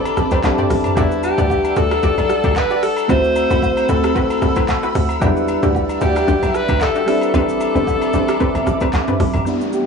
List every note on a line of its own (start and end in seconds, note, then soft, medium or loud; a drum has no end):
0.00 0.39 C4 medium
0.00 0.94 C4 medium
0.00 0.40 D4 medium
0.00 0.40 E4 medium
0.00 0.28 G4 loud
0.00 0.41 G4 medium
0.00 0.67 A4 loud
0.00 0.28 B4 medium
0.00 0.41 B4 medium
0.00 0.28 C5 medium
0.00 0.28 D5 loud
0.00 3.05 A5 medium
0.00 0.95 B5 medium
0.00 0.94 D6 medium
0.05 high agogo medium
0.05 shaker medium
0.17 0.30 A1 medium
0.17 cross-stick loud
0.17 shaker medium
0.31 0.42 A1 medium
0.31 0.39 G4 medium
0.31 0.39 B4 medium
0.31 0.39 C5 medium
0.31 0.39 D5 medium
0.31 kick loud
0.31 high agogo medium
0.31 shaker medium
0.43 0.57 B1 loud
0.43 0.97 C4 medium
0.43 0.95 D4 medium
0.43 0.96 E4 medium
0.43 0.97 G4 medium
0.43 0.98 A4 medium
0.43 kick medium
0.43 clap medium
0.43 low woodblock medium
0.43 shaker medium
0.58 0.66 G4 medium
0.58 0.66 B4 medium
0.58 0.66 C5 medium
0.58 0.66 D5 medium
0.58 mid tom medium
0.58 shaker soft
0.70 0.83 A1 medium
0.70 cross-stick loud
0.70 open hi-hat medium
0.70 shaker medium
0.84 mid tom medium
0.84 high agogo medium
0.84 shaker medium
0.95 1.33 E2 loud
0.95 3.05 G3 medium
0.95 3.05 D4 medium
0.95 3.06 E4 medium
0.95 1.22 E4 medium
0.95 1.06 F#4 loud
0.95 1.06 G4 medium
0.95 3.07 D5 medium
0.95 1.06 D5 loud
0.95 5.18 F#5 medium
0.95 3.06 F#5 medium
0.95 7.04 E6 medium
0.95 kick loud
0.95 high agogo medium
0.95 shaker loud
1.00 3.07 B4 medium
1.12 shaker medium
1.23 1.79 G4 loud
1.23 high agogo medium
1.23 shaker medium
1.38 1.71 D2 medium
1.38 1.74 G4 medium
1.38 1.74 D5 medium
1.38 1.74 F#5 medium
1.38 shaker medium
1.50 kick medium
1.50 low woodblock medium
1.50 shaker medium
1.65 high agogo medium
1.65 shaker medium
1.76 2.00 D2 loud
1.76 2.01 F#4 medium
1.76 2.01 G4 medium
1.76 2.58 A4 loud
1.76 2.01 D5 medium
1.76 cross-stick medium
1.76 shaker medium
1.91 cross-stick loud
1.91 high agogo medium
1.91 shaker medium
2.03 2.16 A1 loud
2.03 2.41 F#4 medium
2.03 2.41 G4 medium
2.03 2.41 D5 loud
2.03 kick loud
2.03 shaker medium
2.18 2.41 B1 medium
2.18 high agogo medium
2.18 shaker soft
2.29 cross-stick loud
2.29 shaker loud
2.43 2.54 D2 medium
2.43 2.51 F#4 medium
2.43 2.52 G4 medium
2.43 2.52 D5 medium
2.43 kick loud
2.43 high agogo medium
2.43 shaker medium
2.56 2.85 B4 loud
2.56 kick medium
2.56 clap medium
2.56 low woodblock medium
2.56 shaker medium
2.70 2.78 F#4 medium
2.70 2.78 G4 medium
2.70 2.78 D5 medium
2.70 shaker soft
2.83 3.09 A4 loud
2.83 cross-stick loud
2.83 open hi-hat medium
2.83 shaker medium
2.97 high agogo medium
2.97 shaker medium
3.08 3.45 D2 loud
3.08 5.17 A3 medium
3.08 5.18 C4 medium
3.08 3.18 C4 loud
3.08 5.20 C4 medium
3.08 3.18 E4 medium
3.08 5.18 E4 medium
3.08 3.18 F#4 medium
3.08 5.19 F#4 medium
3.08 3.19 B4 loud
3.08 3.91 C5 loud
3.08 5.20 B5 medium
3.08 kick loud
3.08 high agogo medium
3.08 shaker loud
3.12 5.19 C5 medium
3.24 shaker medium
3.36 high agogo medium
3.36 shaker medium
3.50 3.84 C2 medium
3.50 3.86 C4 medium
3.50 3.86 E4 medium
3.50 3.86 F#4 medium
3.50 3.86 B5 medium
3.50 shaker medium
3.62 kick medium
3.62 low woodblock medium
3.62 shaker medium
3.77 high agogo medium
3.77 shaker medium
3.89 4.35 D2 medium
3.89 4.13 C4 medium
3.89 4.13 E4 medium
3.89 4.14 F#4 medium
3.89 4.16 A4 loud
3.89 4.14 B4 medium
3.89 shaker loud
4.04 cross-stick loud
4.04 high agogo medium
4.04 shaker medium
4.15 4.53 C4 medium
4.15 4.53 E4 medium
4.15 4.53 F#4 medium
4.15 4.92 A4 medium
4.15 4.53 B4 loud
4.15 kick loud
4.15 shaker medium
4.30 high agogo medium
4.30 shaker medium
4.42 4.88 C2 medium
4.42 cross-stick loud
4.42 shaker medium
4.56 4.64 C4 medium
4.56 4.64 E4 medium
4.56 4.64 F#4 medium
4.56 4.64 B4 medium
4.56 kick loud
4.56 high agogo medium
4.56 shaker medium
4.68 kick medium
4.68 clap medium
4.68 low woodblock medium
4.68 shaker medium
4.83 4.90 C4 medium
4.83 4.91 E4 medium
4.83 4.91 F#4 medium
4.83 4.91 B4 medium
4.83 shaker soft
4.95 5.18 D2 medium
4.95 cross-stick medium
4.95 open hi-hat medium
4.95 shaker medium
5.09 high agogo medium
5.09 shaker medium
5.20 5.57 E2 loud
5.20 5.28 F#3 medium
5.20 7.04 D4 medium
5.20 5.31 D4 loud
5.20 7.04 E4 medium
5.20 5.31 F#4 medium
5.20 5.31 G4 loud
5.20 7.06 D5 medium
5.20 9.43 E5 medium
5.20 7.06 F#5 medium
5.20 7.05 F#5 medium
5.20 kick loud
5.20 high agogo medium
5.20 shaker loud
5.24 7.05 G3 medium
5.24 7.05 B4 medium
5.37 shaker medium
5.48 high agogo medium
5.48 shaker medium
5.62 5.96 D2 loud
5.62 5.98 D4 medium
5.62 5.98 F#4 medium
5.62 5.99 G4 medium
5.62 shaker medium
5.75 kick medium
5.75 low woodblock medium
5.75 shaker medium
5.89 high agogo medium
5.89 shaker medium
6.01 6.24 D2 medium
6.01 6.26 D4 medium
6.01 6.26 F#4 medium
6.01 6.26 G4 medium
6.01 6.57 G4 loud
6.01 cross-stick medium
6.01 shaker loud
6.16 cross-stick loud
6.16 high agogo medium
6.16 shaker medium
6.28 6.41 A1 loud
6.28 6.65 D4 medium
6.28 6.65 F#4 medium
6.28 6.66 G4 loud
6.28 kick loud
6.28 shaker medium
6.43 6.66 B1 medium
6.43 high agogo medium
6.43 shaker medium
6.54 6.83 B4 loud
6.54 cross-stick loud
6.54 shaker medium
6.68 6.79 D2 medium
6.68 6.76 D4 medium
6.68 6.76 F#4 medium
6.68 6.77 G4 medium
6.68 kick loud
6.68 high agogo medium
6.68 shaker medium
6.81 7.34 A4 loud
6.81 kick medium
6.81 clap medium
6.81 low woodblock medium
6.81 shaker medium
6.95 7.03 D4 medium
6.95 7.03 F#4 medium
6.95 7.03 G4 medium
6.95 shaker soft
7.06 9.15 G3 medium
7.06 9.16 C4 medium
7.06 9.44 C4 medium
7.06 9.16 D4 medium
7.06 9.17 E4 medium
7.06 9.44 B5 medium
7.06 9.44 D6 medium
7.06 cross-stick loud
7.06 open hi-hat medium
7.06 shaker medium
7.10 9.17 B4 medium
7.21 high agogo medium
7.21 shaker medium
7.34 7.70 A1 loud
7.34 7.43 C4 loud
7.34 7.43 D4 medium
7.34 7.43 G4 medium
7.34 9.16 A4 loud
7.34 7.43 B4 loud
7.34 kick loud
7.34 high agogo medium
7.34 shaker loud
7.49 shaker medium
7.61 high agogo medium
7.61 shaker medium
7.75 8.09 G1 loud
7.75 8.11 C4 medium
7.75 8.11 D4 medium
7.75 8.11 G4 medium
7.75 8.11 B4 medium
7.75 shaker soft
7.87 kick medium
7.87 low woodblock medium
7.87 shaker medium
8.02 high agogo medium
8.02 shaker medium
8.13 8.37 A1 medium
8.13 8.38 C4 medium
8.13 8.38 D4 medium
8.13 8.38 G4 medium
8.13 8.39 B4 medium
8.13 shaker medium
8.28 cross-stick loud
8.28 high agogo medium
8.28 shaker medium
8.40 8.78 C4 medium
8.40 8.78 D4 medium
8.40 8.78 G4 medium
8.40 8.78 B4 loud
8.40 kick loud
8.40 shaker medium
8.55 8.65 G1 medium
8.55 high agogo medium
8.55 shaker medium
8.67 8.79 A1 loud
8.67 cross-stick medium
8.67 shaker medium
8.81 8.89 C4 medium
8.81 8.89 D4 medium
8.81 8.89 G4 medium
8.81 8.89 B4 medium
8.81 kick medium
8.81 high agogo medium
8.81 shaker medium
8.93 9.06 A1 medium
8.93 kick medium
8.93 clap medium
8.93 low woodblock medium
8.93 shaker medium
9.08 9.15 C4 medium
9.08 9.15 D4 medium
9.08 9.15 G4 medium
9.08 9.16 B4 medium
9.08 mid tom medium
9.08 shaker soft
9.20 9.33 B1 loud
9.20 cross-stick medium
9.20 open hi-hat medium
9.20 shaker medium
9.34 9.45 A1 medium
9.34 mid tom medium
9.34 high agogo medium
9.34 shaker medium
9.45 9.86 E2 medium
9.45 9.86 E3 medium
9.45 9.86 G3 medium
9.45 9.86 B3 medium
9.45 9.86 D4 medium
9.45 9.59 E4 medium
9.45 9.86 E4 medium
9.45 9.86 G4 medium
9.45 9.86 D5 medium
9.45 9.86 F#5 medium
9.45 downlifter medium
9.45 shaker loud
9.49 9.86 F#5 medium
9.61 shaker medium
9.73 9.86 G4 loud
9.73 shaker medium